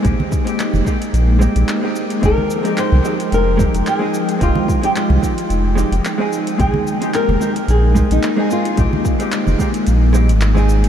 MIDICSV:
0, 0, Header, 1, 6, 480
1, 0, Start_track
1, 0, Tempo, 545455
1, 40, Time_signature, 4, 2, 24, 8
1, 9581, End_track
2, 0, Start_track
2, 0, Title_t, "Nylon-string guitar"
2, 0, Program_c, 0, 24
2, 1984, Note_on_c, 0, 70, 98
2, 2419, Note_off_c, 0, 70, 0
2, 2458, Note_on_c, 0, 72, 92
2, 2937, Note_off_c, 0, 72, 0
2, 2940, Note_on_c, 0, 70, 96
2, 3412, Note_off_c, 0, 70, 0
2, 3415, Note_on_c, 0, 68, 91
2, 3893, Note_off_c, 0, 68, 0
2, 3896, Note_on_c, 0, 65, 91
2, 4234, Note_off_c, 0, 65, 0
2, 4268, Note_on_c, 0, 67, 80
2, 4312, Note_off_c, 0, 67, 0
2, 4379, Note_on_c, 0, 65, 70
2, 5294, Note_off_c, 0, 65, 0
2, 5809, Note_on_c, 0, 68, 102
2, 6290, Note_off_c, 0, 68, 0
2, 6293, Note_on_c, 0, 70, 100
2, 6775, Note_off_c, 0, 70, 0
2, 6779, Note_on_c, 0, 68, 93
2, 7146, Note_on_c, 0, 63, 89
2, 7151, Note_off_c, 0, 68, 0
2, 7498, Note_off_c, 0, 63, 0
2, 7501, Note_on_c, 0, 65, 87
2, 9135, Note_off_c, 0, 65, 0
2, 9581, End_track
3, 0, Start_track
3, 0, Title_t, "Hollow-body jazz guitar"
3, 0, Program_c, 1, 26
3, 21, Note_on_c, 1, 56, 85
3, 29, Note_on_c, 1, 60, 75
3, 40, Note_on_c, 1, 63, 77
3, 51, Note_on_c, 1, 67, 93
3, 370, Note_off_c, 1, 56, 0
3, 374, Note_off_c, 1, 60, 0
3, 379, Note_off_c, 1, 63, 0
3, 385, Note_off_c, 1, 67, 0
3, 390, Note_on_c, 1, 56, 86
3, 397, Note_on_c, 1, 60, 89
3, 408, Note_on_c, 1, 63, 77
3, 419, Note_on_c, 1, 67, 101
3, 724, Note_off_c, 1, 56, 0
3, 727, Note_off_c, 1, 60, 0
3, 732, Note_off_c, 1, 63, 0
3, 738, Note_off_c, 1, 67, 0
3, 746, Note_on_c, 1, 56, 79
3, 756, Note_on_c, 1, 60, 76
3, 766, Note_on_c, 1, 63, 73
3, 775, Note_on_c, 1, 67, 93
3, 839, Note_off_c, 1, 56, 0
3, 844, Note_off_c, 1, 60, 0
3, 849, Note_off_c, 1, 63, 0
3, 853, Note_off_c, 1, 67, 0
3, 1223, Note_on_c, 1, 56, 73
3, 1231, Note_on_c, 1, 60, 72
3, 1245, Note_on_c, 1, 63, 73
3, 1251, Note_on_c, 1, 67, 83
3, 1571, Note_off_c, 1, 56, 0
3, 1575, Note_off_c, 1, 60, 0
3, 1582, Note_off_c, 1, 63, 0
3, 1585, Note_off_c, 1, 67, 0
3, 1595, Note_on_c, 1, 56, 70
3, 1606, Note_on_c, 1, 60, 69
3, 1614, Note_on_c, 1, 63, 67
3, 1624, Note_on_c, 1, 67, 84
3, 1926, Note_off_c, 1, 56, 0
3, 1931, Note_off_c, 1, 60, 0
3, 1935, Note_off_c, 1, 63, 0
3, 1940, Note_off_c, 1, 67, 0
3, 1943, Note_on_c, 1, 56, 86
3, 1953, Note_on_c, 1, 60, 80
3, 1961, Note_on_c, 1, 63, 79
3, 1971, Note_on_c, 1, 67, 96
3, 2291, Note_off_c, 1, 56, 0
3, 2296, Note_off_c, 1, 60, 0
3, 2300, Note_off_c, 1, 63, 0
3, 2305, Note_off_c, 1, 67, 0
3, 2313, Note_on_c, 1, 56, 94
3, 2320, Note_on_c, 1, 60, 83
3, 2331, Note_on_c, 1, 63, 86
3, 2342, Note_on_c, 1, 67, 95
3, 2645, Note_off_c, 1, 56, 0
3, 2648, Note_off_c, 1, 60, 0
3, 2654, Note_off_c, 1, 63, 0
3, 2659, Note_off_c, 1, 67, 0
3, 2662, Note_on_c, 1, 56, 81
3, 2671, Note_on_c, 1, 60, 76
3, 2681, Note_on_c, 1, 63, 75
3, 2690, Note_on_c, 1, 67, 95
3, 2757, Note_off_c, 1, 56, 0
3, 2761, Note_off_c, 1, 60, 0
3, 2766, Note_off_c, 1, 63, 0
3, 2771, Note_off_c, 1, 67, 0
3, 3144, Note_on_c, 1, 56, 86
3, 3153, Note_on_c, 1, 60, 74
3, 3159, Note_on_c, 1, 63, 73
3, 3169, Note_on_c, 1, 67, 92
3, 3288, Note_off_c, 1, 56, 0
3, 3293, Note_off_c, 1, 60, 0
3, 3296, Note_off_c, 1, 63, 0
3, 3301, Note_off_c, 1, 67, 0
3, 3512, Note_on_c, 1, 56, 89
3, 3522, Note_on_c, 1, 60, 83
3, 3529, Note_on_c, 1, 63, 81
3, 3539, Note_on_c, 1, 68, 96
3, 3844, Note_off_c, 1, 56, 0
3, 3849, Note_off_c, 1, 60, 0
3, 3853, Note_off_c, 1, 63, 0
3, 3858, Note_off_c, 1, 68, 0
3, 3861, Note_on_c, 1, 56, 89
3, 3873, Note_on_c, 1, 60, 79
3, 3883, Note_on_c, 1, 63, 80
3, 3891, Note_on_c, 1, 67, 94
3, 4210, Note_off_c, 1, 56, 0
3, 4216, Note_off_c, 1, 60, 0
3, 4221, Note_off_c, 1, 63, 0
3, 4225, Note_off_c, 1, 67, 0
3, 4237, Note_on_c, 1, 56, 94
3, 4247, Note_on_c, 1, 60, 85
3, 4256, Note_on_c, 1, 63, 83
3, 4264, Note_on_c, 1, 67, 96
3, 4567, Note_off_c, 1, 56, 0
3, 4572, Note_off_c, 1, 60, 0
3, 4576, Note_off_c, 1, 63, 0
3, 4580, Note_off_c, 1, 67, 0
3, 4591, Note_on_c, 1, 56, 84
3, 4597, Note_on_c, 1, 60, 79
3, 4607, Note_on_c, 1, 63, 74
3, 4619, Note_on_c, 1, 67, 89
3, 4681, Note_off_c, 1, 56, 0
3, 4684, Note_off_c, 1, 60, 0
3, 4689, Note_off_c, 1, 63, 0
3, 4695, Note_off_c, 1, 67, 0
3, 5063, Note_on_c, 1, 56, 86
3, 5075, Note_on_c, 1, 60, 74
3, 5083, Note_on_c, 1, 63, 73
3, 5089, Note_on_c, 1, 67, 92
3, 5208, Note_off_c, 1, 56, 0
3, 5214, Note_off_c, 1, 60, 0
3, 5218, Note_off_c, 1, 63, 0
3, 5221, Note_off_c, 1, 67, 0
3, 5438, Note_on_c, 1, 56, 87
3, 5448, Note_on_c, 1, 60, 83
3, 5455, Note_on_c, 1, 63, 81
3, 5465, Note_on_c, 1, 68, 96
3, 5768, Note_off_c, 1, 56, 0
3, 5772, Note_off_c, 1, 60, 0
3, 5776, Note_off_c, 1, 63, 0
3, 5781, Note_off_c, 1, 68, 0
3, 5785, Note_on_c, 1, 56, 88
3, 5795, Note_on_c, 1, 60, 81
3, 5807, Note_on_c, 1, 63, 81
3, 5814, Note_on_c, 1, 79, 96
3, 6132, Note_off_c, 1, 56, 0
3, 6137, Note_off_c, 1, 60, 0
3, 6143, Note_off_c, 1, 63, 0
3, 6146, Note_off_c, 1, 79, 0
3, 6165, Note_on_c, 1, 56, 96
3, 6174, Note_on_c, 1, 60, 80
3, 6181, Note_on_c, 1, 63, 82
3, 6191, Note_on_c, 1, 67, 98
3, 6491, Note_off_c, 1, 56, 0
3, 6495, Note_off_c, 1, 60, 0
3, 6499, Note_off_c, 1, 63, 0
3, 6504, Note_off_c, 1, 67, 0
3, 6509, Note_on_c, 1, 56, 82
3, 6516, Note_on_c, 1, 60, 74
3, 6527, Note_on_c, 1, 63, 75
3, 6538, Note_on_c, 1, 67, 91
3, 6600, Note_off_c, 1, 56, 0
3, 6604, Note_off_c, 1, 60, 0
3, 6609, Note_off_c, 1, 63, 0
3, 6615, Note_off_c, 1, 67, 0
3, 6993, Note_on_c, 1, 56, 85
3, 7003, Note_on_c, 1, 60, 80
3, 7011, Note_on_c, 1, 63, 82
3, 7018, Note_on_c, 1, 67, 95
3, 7133, Note_off_c, 1, 56, 0
3, 7138, Note_off_c, 1, 60, 0
3, 7142, Note_off_c, 1, 63, 0
3, 7145, Note_off_c, 1, 67, 0
3, 7362, Note_on_c, 1, 56, 92
3, 7370, Note_on_c, 1, 60, 83
3, 7378, Note_on_c, 1, 63, 85
3, 7388, Note_on_c, 1, 68, 98
3, 7689, Note_off_c, 1, 56, 0
3, 7693, Note_off_c, 1, 60, 0
3, 7698, Note_off_c, 1, 63, 0
3, 7702, Note_off_c, 1, 68, 0
3, 7709, Note_on_c, 1, 56, 88
3, 7722, Note_on_c, 1, 60, 81
3, 7729, Note_on_c, 1, 63, 81
3, 7741, Note_on_c, 1, 67, 91
3, 8054, Note_off_c, 1, 56, 0
3, 8060, Note_off_c, 1, 60, 0
3, 8064, Note_off_c, 1, 63, 0
3, 8070, Note_off_c, 1, 67, 0
3, 8086, Note_on_c, 1, 56, 93
3, 8094, Note_on_c, 1, 60, 84
3, 8104, Note_on_c, 1, 63, 83
3, 8115, Note_on_c, 1, 67, 100
3, 8411, Note_off_c, 1, 56, 0
3, 8415, Note_off_c, 1, 60, 0
3, 8420, Note_off_c, 1, 63, 0
3, 8426, Note_off_c, 1, 67, 0
3, 8433, Note_on_c, 1, 56, 81
3, 8443, Note_on_c, 1, 60, 75
3, 8453, Note_on_c, 1, 63, 77
3, 8459, Note_on_c, 1, 67, 93
3, 8522, Note_off_c, 1, 56, 0
3, 8527, Note_off_c, 1, 60, 0
3, 8532, Note_off_c, 1, 63, 0
3, 8535, Note_off_c, 1, 67, 0
3, 8914, Note_on_c, 1, 56, 86
3, 8923, Note_on_c, 1, 60, 74
3, 8929, Note_on_c, 1, 63, 73
3, 8940, Note_on_c, 1, 67, 85
3, 9053, Note_off_c, 1, 56, 0
3, 9058, Note_off_c, 1, 60, 0
3, 9061, Note_off_c, 1, 63, 0
3, 9066, Note_off_c, 1, 67, 0
3, 9279, Note_on_c, 1, 56, 91
3, 9285, Note_on_c, 1, 60, 82
3, 9298, Note_on_c, 1, 63, 82
3, 9307, Note_on_c, 1, 68, 104
3, 9581, Note_off_c, 1, 56, 0
3, 9581, Note_off_c, 1, 60, 0
3, 9581, Note_off_c, 1, 63, 0
3, 9581, Note_off_c, 1, 68, 0
3, 9581, End_track
4, 0, Start_track
4, 0, Title_t, "Analog synth pad"
4, 0, Program_c, 2, 89
4, 0, Note_on_c, 2, 56, 74
4, 0, Note_on_c, 2, 58, 69
4, 0, Note_on_c, 2, 63, 81
4, 1921, Note_off_c, 2, 56, 0
4, 1922, Note_off_c, 2, 58, 0
4, 1928, Note_off_c, 2, 63, 0
4, 1953, Note_on_c, 2, 56, 80
4, 1954, Note_on_c, 2, 79, 73
4, 1956, Note_on_c, 2, 53, 73
4, 1957, Note_on_c, 2, 63, 66
4, 5761, Note_off_c, 2, 56, 0
4, 5762, Note_off_c, 2, 79, 0
4, 5763, Note_off_c, 2, 53, 0
4, 5805, Note_on_c, 2, 58, 67
4, 5807, Note_on_c, 2, 56, 79
4, 9581, Note_off_c, 2, 56, 0
4, 9581, Note_off_c, 2, 58, 0
4, 9581, Note_off_c, 2, 63, 0
4, 9581, End_track
5, 0, Start_track
5, 0, Title_t, "Sub bass"
5, 0, Program_c, 3, 38
5, 42, Note_on_c, 3, 34, 83
5, 131, Note_off_c, 3, 34, 0
5, 647, Note_on_c, 3, 29, 95
5, 724, Note_off_c, 3, 29, 0
5, 996, Note_on_c, 3, 34, 74
5, 1303, Note_off_c, 3, 34, 0
5, 1371, Note_on_c, 3, 34, 84
5, 1445, Note_off_c, 3, 34, 0
5, 1961, Note_on_c, 3, 29, 91
5, 2050, Note_off_c, 3, 29, 0
5, 2571, Note_on_c, 3, 36, 99
5, 2646, Note_off_c, 3, 36, 0
5, 2923, Note_on_c, 3, 29, 77
5, 3226, Note_off_c, 3, 29, 0
5, 3291, Note_on_c, 3, 29, 86
5, 3366, Note_off_c, 3, 29, 0
5, 3882, Note_on_c, 3, 29, 89
5, 3971, Note_off_c, 3, 29, 0
5, 4486, Note_on_c, 3, 36, 100
5, 4563, Note_off_c, 3, 36, 0
5, 4838, Note_on_c, 3, 29, 72
5, 5144, Note_off_c, 3, 29, 0
5, 5207, Note_on_c, 3, 29, 86
5, 5284, Note_off_c, 3, 29, 0
5, 5803, Note_on_c, 3, 34, 87
5, 5891, Note_off_c, 3, 34, 0
5, 6410, Note_on_c, 3, 29, 101
5, 6485, Note_off_c, 3, 29, 0
5, 6759, Note_on_c, 3, 34, 77
5, 7064, Note_off_c, 3, 34, 0
5, 7135, Note_on_c, 3, 34, 83
5, 7208, Note_off_c, 3, 34, 0
5, 7726, Note_on_c, 3, 34, 88
5, 7813, Note_off_c, 3, 34, 0
5, 8333, Note_on_c, 3, 29, 104
5, 8407, Note_off_c, 3, 29, 0
5, 8687, Note_on_c, 3, 34, 78
5, 9055, Note_on_c, 3, 32, 113
5, 9068, Note_off_c, 3, 34, 0
5, 9537, Note_on_c, 3, 29, 92
5, 9550, Note_off_c, 3, 32, 0
5, 9581, Note_off_c, 3, 29, 0
5, 9581, End_track
6, 0, Start_track
6, 0, Title_t, "Drums"
6, 41, Note_on_c, 9, 42, 41
6, 42, Note_on_c, 9, 36, 116
6, 45, Note_on_c, 9, 69, 42
6, 129, Note_off_c, 9, 42, 0
6, 130, Note_off_c, 9, 36, 0
6, 133, Note_off_c, 9, 69, 0
6, 174, Note_on_c, 9, 64, 72
6, 262, Note_off_c, 9, 64, 0
6, 282, Note_on_c, 9, 36, 100
6, 284, Note_on_c, 9, 69, 78
6, 370, Note_off_c, 9, 36, 0
6, 372, Note_off_c, 9, 69, 0
6, 414, Note_on_c, 9, 42, 51
6, 418, Note_on_c, 9, 69, 33
6, 502, Note_off_c, 9, 42, 0
6, 506, Note_off_c, 9, 69, 0
6, 524, Note_on_c, 9, 39, 93
6, 524, Note_on_c, 9, 42, 38
6, 529, Note_on_c, 9, 69, 44
6, 612, Note_off_c, 9, 39, 0
6, 612, Note_off_c, 9, 42, 0
6, 617, Note_off_c, 9, 69, 0
6, 648, Note_on_c, 9, 64, 67
6, 659, Note_on_c, 9, 69, 30
6, 736, Note_off_c, 9, 64, 0
6, 747, Note_off_c, 9, 69, 0
6, 762, Note_on_c, 9, 36, 60
6, 766, Note_on_c, 9, 69, 77
6, 850, Note_off_c, 9, 36, 0
6, 854, Note_off_c, 9, 69, 0
6, 895, Note_on_c, 9, 42, 52
6, 899, Note_on_c, 9, 69, 34
6, 983, Note_off_c, 9, 42, 0
6, 987, Note_off_c, 9, 69, 0
6, 1004, Note_on_c, 9, 42, 41
6, 1008, Note_on_c, 9, 69, 44
6, 1092, Note_off_c, 9, 42, 0
6, 1096, Note_off_c, 9, 69, 0
6, 1241, Note_on_c, 9, 63, 57
6, 1247, Note_on_c, 9, 69, 82
6, 1329, Note_off_c, 9, 63, 0
6, 1335, Note_off_c, 9, 69, 0
6, 1372, Note_on_c, 9, 42, 49
6, 1376, Note_on_c, 9, 69, 32
6, 1460, Note_off_c, 9, 42, 0
6, 1464, Note_off_c, 9, 69, 0
6, 1483, Note_on_c, 9, 39, 96
6, 1483, Note_on_c, 9, 42, 40
6, 1488, Note_on_c, 9, 69, 42
6, 1571, Note_off_c, 9, 39, 0
6, 1571, Note_off_c, 9, 42, 0
6, 1576, Note_off_c, 9, 69, 0
6, 1723, Note_on_c, 9, 69, 76
6, 1811, Note_off_c, 9, 69, 0
6, 1851, Note_on_c, 9, 42, 51
6, 1856, Note_on_c, 9, 69, 31
6, 1939, Note_off_c, 9, 42, 0
6, 1944, Note_off_c, 9, 69, 0
6, 1962, Note_on_c, 9, 36, 113
6, 1962, Note_on_c, 9, 42, 41
6, 1966, Note_on_c, 9, 69, 45
6, 2050, Note_off_c, 9, 36, 0
6, 2050, Note_off_c, 9, 42, 0
6, 2054, Note_off_c, 9, 69, 0
6, 2092, Note_on_c, 9, 64, 65
6, 2180, Note_off_c, 9, 64, 0
6, 2204, Note_on_c, 9, 69, 78
6, 2292, Note_off_c, 9, 69, 0
6, 2332, Note_on_c, 9, 42, 50
6, 2336, Note_on_c, 9, 69, 33
6, 2420, Note_off_c, 9, 42, 0
6, 2424, Note_off_c, 9, 69, 0
6, 2442, Note_on_c, 9, 39, 88
6, 2442, Note_on_c, 9, 42, 42
6, 2447, Note_on_c, 9, 69, 46
6, 2530, Note_off_c, 9, 39, 0
6, 2530, Note_off_c, 9, 42, 0
6, 2535, Note_off_c, 9, 69, 0
6, 2573, Note_on_c, 9, 64, 66
6, 2661, Note_off_c, 9, 64, 0
6, 2684, Note_on_c, 9, 69, 77
6, 2772, Note_off_c, 9, 69, 0
6, 2816, Note_on_c, 9, 42, 52
6, 2820, Note_on_c, 9, 69, 32
6, 2904, Note_off_c, 9, 42, 0
6, 2908, Note_off_c, 9, 69, 0
6, 2925, Note_on_c, 9, 42, 44
6, 2929, Note_on_c, 9, 69, 45
6, 3013, Note_off_c, 9, 42, 0
6, 3017, Note_off_c, 9, 69, 0
6, 3161, Note_on_c, 9, 63, 70
6, 3163, Note_on_c, 9, 36, 101
6, 3166, Note_on_c, 9, 69, 73
6, 3249, Note_off_c, 9, 63, 0
6, 3251, Note_off_c, 9, 36, 0
6, 3254, Note_off_c, 9, 69, 0
6, 3296, Note_on_c, 9, 42, 50
6, 3300, Note_on_c, 9, 69, 32
6, 3384, Note_off_c, 9, 42, 0
6, 3388, Note_off_c, 9, 69, 0
6, 3404, Note_on_c, 9, 39, 91
6, 3404, Note_on_c, 9, 42, 38
6, 3408, Note_on_c, 9, 69, 40
6, 3492, Note_off_c, 9, 39, 0
6, 3492, Note_off_c, 9, 42, 0
6, 3496, Note_off_c, 9, 69, 0
6, 3646, Note_on_c, 9, 69, 76
6, 3734, Note_off_c, 9, 69, 0
6, 3772, Note_on_c, 9, 42, 49
6, 3777, Note_on_c, 9, 69, 30
6, 3860, Note_off_c, 9, 42, 0
6, 3865, Note_off_c, 9, 69, 0
6, 3882, Note_on_c, 9, 36, 108
6, 3883, Note_on_c, 9, 42, 43
6, 3887, Note_on_c, 9, 69, 42
6, 3970, Note_off_c, 9, 36, 0
6, 3971, Note_off_c, 9, 42, 0
6, 3975, Note_off_c, 9, 69, 0
6, 4008, Note_on_c, 9, 64, 75
6, 4096, Note_off_c, 9, 64, 0
6, 4122, Note_on_c, 9, 36, 92
6, 4129, Note_on_c, 9, 69, 68
6, 4210, Note_off_c, 9, 36, 0
6, 4217, Note_off_c, 9, 69, 0
6, 4255, Note_on_c, 9, 42, 53
6, 4259, Note_on_c, 9, 69, 30
6, 4343, Note_off_c, 9, 42, 0
6, 4347, Note_off_c, 9, 69, 0
6, 4366, Note_on_c, 9, 39, 93
6, 4366, Note_on_c, 9, 42, 43
6, 4371, Note_on_c, 9, 69, 41
6, 4454, Note_off_c, 9, 39, 0
6, 4454, Note_off_c, 9, 42, 0
6, 4459, Note_off_c, 9, 69, 0
6, 4489, Note_on_c, 9, 64, 71
6, 4577, Note_off_c, 9, 64, 0
6, 4602, Note_on_c, 9, 36, 56
6, 4607, Note_on_c, 9, 69, 78
6, 4690, Note_off_c, 9, 36, 0
6, 4695, Note_off_c, 9, 69, 0
6, 4734, Note_on_c, 9, 42, 54
6, 4738, Note_on_c, 9, 69, 30
6, 4822, Note_off_c, 9, 42, 0
6, 4826, Note_off_c, 9, 69, 0
6, 4843, Note_on_c, 9, 42, 44
6, 4847, Note_on_c, 9, 69, 41
6, 4931, Note_off_c, 9, 42, 0
6, 4935, Note_off_c, 9, 69, 0
6, 5080, Note_on_c, 9, 63, 65
6, 5086, Note_on_c, 9, 69, 71
6, 5168, Note_off_c, 9, 63, 0
6, 5174, Note_off_c, 9, 69, 0
6, 5214, Note_on_c, 9, 42, 53
6, 5218, Note_on_c, 9, 69, 31
6, 5302, Note_off_c, 9, 42, 0
6, 5306, Note_off_c, 9, 69, 0
6, 5326, Note_on_c, 9, 39, 86
6, 5326, Note_on_c, 9, 42, 40
6, 5330, Note_on_c, 9, 69, 41
6, 5414, Note_off_c, 9, 39, 0
6, 5414, Note_off_c, 9, 42, 0
6, 5418, Note_off_c, 9, 69, 0
6, 5567, Note_on_c, 9, 69, 70
6, 5655, Note_off_c, 9, 69, 0
6, 5695, Note_on_c, 9, 42, 50
6, 5699, Note_on_c, 9, 69, 31
6, 5783, Note_off_c, 9, 42, 0
6, 5787, Note_off_c, 9, 69, 0
6, 5804, Note_on_c, 9, 36, 104
6, 5805, Note_on_c, 9, 42, 45
6, 5809, Note_on_c, 9, 69, 40
6, 5892, Note_off_c, 9, 36, 0
6, 5893, Note_off_c, 9, 42, 0
6, 5897, Note_off_c, 9, 69, 0
6, 5929, Note_on_c, 9, 64, 82
6, 6017, Note_off_c, 9, 64, 0
6, 6048, Note_on_c, 9, 69, 72
6, 6136, Note_off_c, 9, 69, 0
6, 6175, Note_on_c, 9, 42, 53
6, 6179, Note_on_c, 9, 69, 31
6, 6263, Note_off_c, 9, 42, 0
6, 6267, Note_off_c, 9, 69, 0
6, 6284, Note_on_c, 9, 39, 93
6, 6284, Note_on_c, 9, 42, 46
6, 6288, Note_on_c, 9, 69, 41
6, 6372, Note_off_c, 9, 39, 0
6, 6372, Note_off_c, 9, 42, 0
6, 6376, Note_off_c, 9, 69, 0
6, 6415, Note_on_c, 9, 64, 76
6, 6503, Note_off_c, 9, 64, 0
6, 6526, Note_on_c, 9, 69, 72
6, 6614, Note_off_c, 9, 69, 0
6, 6653, Note_on_c, 9, 42, 56
6, 6658, Note_on_c, 9, 69, 29
6, 6741, Note_off_c, 9, 42, 0
6, 6746, Note_off_c, 9, 69, 0
6, 6762, Note_on_c, 9, 42, 44
6, 6767, Note_on_c, 9, 69, 40
6, 6850, Note_off_c, 9, 42, 0
6, 6855, Note_off_c, 9, 69, 0
6, 6997, Note_on_c, 9, 63, 67
6, 7005, Note_on_c, 9, 36, 88
6, 7006, Note_on_c, 9, 69, 73
6, 7085, Note_off_c, 9, 63, 0
6, 7093, Note_off_c, 9, 36, 0
6, 7094, Note_off_c, 9, 69, 0
6, 7137, Note_on_c, 9, 42, 55
6, 7141, Note_on_c, 9, 69, 30
6, 7225, Note_off_c, 9, 42, 0
6, 7229, Note_off_c, 9, 69, 0
6, 7244, Note_on_c, 9, 39, 96
6, 7244, Note_on_c, 9, 42, 42
6, 7248, Note_on_c, 9, 69, 40
6, 7332, Note_off_c, 9, 39, 0
6, 7332, Note_off_c, 9, 42, 0
6, 7336, Note_off_c, 9, 69, 0
6, 7487, Note_on_c, 9, 69, 67
6, 7575, Note_off_c, 9, 69, 0
6, 7615, Note_on_c, 9, 42, 54
6, 7620, Note_on_c, 9, 69, 31
6, 7703, Note_off_c, 9, 42, 0
6, 7708, Note_off_c, 9, 69, 0
6, 7721, Note_on_c, 9, 42, 46
6, 7725, Note_on_c, 9, 36, 108
6, 7725, Note_on_c, 9, 69, 41
6, 7809, Note_off_c, 9, 42, 0
6, 7813, Note_off_c, 9, 36, 0
6, 7813, Note_off_c, 9, 69, 0
6, 7859, Note_on_c, 9, 64, 74
6, 7947, Note_off_c, 9, 64, 0
6, 7964, Note_on_c, 9, 36, 95
6, 7967, Note_on_c, 9, 69, 70
6, 8052, Note_off_c, 9, 36, 0
6, 8055, Note_off_c, 9, 69, 0
6, 8094, Note_on_c, 9, 42, 55
6, 8099, Note_on_c, 9, 69, 29
6, 8182, Note_off_c, 9, 42, 0
6, 8187, Note_off_c, 9, 69, 0
6, 8203, Note_on_c, 9, 39, 100
6, 8203, Note_on_c, 9, 42, 47
6, 8207, Note_on_c, 9, 69, 43
6, 8291, Note_off_c, 9, 39, 0
6, 8291, Note_off_c, 9, 42, 0
6, 8295, Note_off_c, 9, 69, 0
6, 8332, Note_on_c, 9, 64, 69
6, 8338, Note_on_c, 9, 69, 28
6, 8420, Note_off_c, 9, 64, 0
6, 8426, Note_off_c, 9, 69, 0
6, 8444, Note_on_c, 9, 36, 56
6, 8447, Note_on_c, 9, 69, 76
6, 8532, Note_off_c, 9, 36, 0
6, 8535, Note_off_c, 9, 69, 0
6, 8572, Note_on_c, 9, 42, 58
6, 8576, Note_on_c, 9, 69, 30
6, 8660, Note_off_c, 9, 42, 0
6, 8664, Note_off_c, 9, 69, 0
6, 8682, Note_on_c, 9, 42, 45
6, 8686, Note_on_c, 9, 69, 42
6, 8770, Note_off_c, 9, 42, 0
6, 8774, Note_off_c, 9, 69, 0
6, 8913, Note_on_c, 9, 63, 65
6, 8928, Note_on_c, 9, 69, 74
6, 9001, Note_off_c, 9, 63, 0
6, 9016, Note_off_c, 9, 69, 0
6, 9058, Note_on_c, 9, 42, 57
6, 9062, Note_on_c, 9, 69, 31
6, 9146, Note_off_c, 9, 42, 0
6, 9150, Note_off_c, 9, 69, 0
6, 9164, Note_on_c, 9, 39, 102
6, 9164, Note_on_c, 9, 42, 42
6, 9168, Note_on_c, 9, 69, 43
6, 9252, Note_off_c, 9, 39, 0
6, 9252, Note_off_c, 9, 42, 0
6, 9256, Note_off_c, 9, 69, 0
6, 9297, Note_on_c, 9, 63, 63
6, 9301, Note_on_c, 9, 69, 27
6, 9385, Note_off_c, 9, 63, 0
6, 9389, Note_off_c, 9, 69, 0
6, 9411, Note_on_c, 9, 69, 69
6, 9499, Note_off_c, 9, 69, 0
6, 9539, Note_on_c, 9, 42, 54
6, 9543, Note_on_c, 9, 69, 31
6, 9581, Note_off_c, 9, 42, 0
6, 9581, Note_off_c, 9, 69, 0
6, 9581, End_track
0, 0, End_of_file